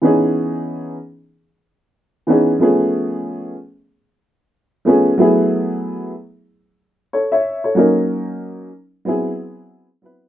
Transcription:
0.02 E3 B3 C#4 D#4 G#4
2.27 E3 B3 C#4 D#4 G#4
2.59 F3 A3 B3 C#4 G#4
4.85 F3 A3 B3 C#4 G#4
5.18 F#3 A3 B3 E4 G#4
7.13 A4 C#5
7.32 C#5 E5
7.64 A4 C#5
7.75 F#3 A#3 C#4 D#4
7.79 A#4
9.05 F#3 B3 C4 E4 G#4
10.02 F#3 B3 C4 E4 B4

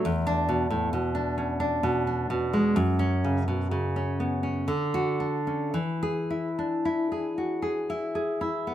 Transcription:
0.05 E2
0.27 D4
0.49 B2
0.70 A2
0.93 B2
1.15 D4
1.38 C#4
1.60 D4
1.83 B2
2.07 D4
2.30 B2
2.53 G#3
2.76 F#2
2.99 C#4
3.24 C#3
3.48 B2
3.71 C#3
3.96 C#4
4.20 B3
4.43 C#4
4.68 D3
4.94 F#4
5.20 D4
5.47 C#4
5.74 E3
6.03 G#4
6.30 E4
6.59 D4
6.85 E4
7.12 G#4
7.38 F#4
7.62 G#4
7.90 E4
8.15 G#4
8.41 E4
8.67 B3

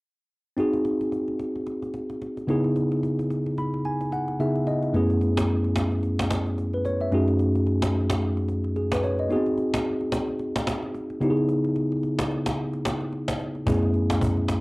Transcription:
0.57 C4 D#4 F#4 G#4, cajon slap
0.73 cajon slap
0.85 cajon slap
1.01 cajon slap
1.12 cajon slap
1.28 cajon slap
1.39 cajon slap
1.56 cajon slap
1.67 cajon slap
1.82 cajon slap
1.94 cajon slap
2.10 cajon slap
2.22 cajon slap
2.37 cajon slap
2.47 C#3 B3 D#4 E4 G#4, cajon slap
2.64 cajon slap
2.76 cajon slap
2.92 cajon slap
3.03 cajon slap
3.19 cajon slap
3.30 cajon slap
3.46 cajon slap
3.58 B5, cajon slap
3.74 cajon slap
3.85 G#5, cajon slap
4.01 cajon slap
4.12 F#5, cajon slap
4.28 cajon slap
4.39 C#3 B3 D#4 E4 G#4 E5, cajon slap
4.55 cajon slap
4.67 D#5, cajon slap
4.83 cajon slap
4.93 F#2 A3 B3 C#4 E4 G#4, cajon slap
5.10 cajon slap
5.21 cajon slap
5.37 cajon slap
5.49 cajon slap
5.64 cajon slap
5.76 cajon slap
5.92 cajon slap
6.03 cajon slap
6.19 cajon slap
6.31 cajon slap
6.46 cajon slap
6.58 cajon slap
6.73 B4, cajon slap
6.85 C#5, cajon slap
7.01 E5, cajon slap
7.11 F#2 A3 C#4 D#4 F#4 G#4, cajon slap
7.28 cajon slap
7.39 cajon slap
7.55 cajon slap
7.67 cajon slap
7.82 cajon slap
7.94 cajon slap
8.10 cajon slap
8.21 cajon slap
8.37 cajon slap
8.48 cajon slap
8.64 cajon slap
8.76 G#4, cajon slap
8.92 B4, cajon slap
9.03 C#5, cajon slap
9.19 D#5, cajon slap
9.29 B3 D#4 F#4 G#4, cajon slap
9.36 C4
9.46 cajon slap
9.58 cajon slap
9.74 cajon slap
9.85 cajon slap
10.01 cajon slap
10.12 cajon slap
10.28 cajon slap
10.39 cajon slap
10.56 cajon slap
10.67 cajon slap
10.83 cajon slap
10.94 cajon slap
11.10 cajon slap
11.20 C#3 B3 D#4 E4 G4, cajon slap
11.30 G#4
11.37 cajon slap
11.49 cajon slap
11.64 cajon slap
11.76 cajon slap
11.92 cajon slap
12.03 cajon slap
12.19 cajon slap
12.30 cajon slap
12.46 cajon slap
12.58 cajon slap
12.73 cajon slap
12.85 cajon slap
13.01 cajon slap
13.13 cajon slap
13.28 cajon slap
13.39 cajon slap
13.55 cajon slap
13.66 F#2 A3 B3 C#4 E4 G#4, cajon bass
13.82 cajon slap
13.94 cajon slap
14.10 cajon slap
14.21 cajon bass
14.37 cajon slap
14.48 cajon slap

